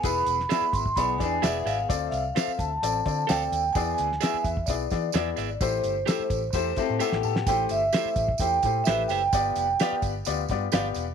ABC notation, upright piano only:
X:1
M:4/4
L:1/8
Q:1/4=129
K:Am
V:1 name="Upright piano"
[B,E^GB] z [B,EGe] z [B,EGd] [B,EGd] [B,EGd] z | [CFAd] z [CFAe] z [CFAd] [CFAd] [CFAd] z | [B,E^Gd] z [B,EGe] z [B,EGd] [B,EGd] [B,EGd] z | [A,EGc] z [A,EGA] z [A,EGc] [A,EGce] [A,EGAg] a |
[A,EGc] z [A,EGc] z [A,EGc] [A,EGc] [A,EGB] z | [B,FGd] z [B,FGd] z [B,FGd] [B,FGd] [B,FGd] z |]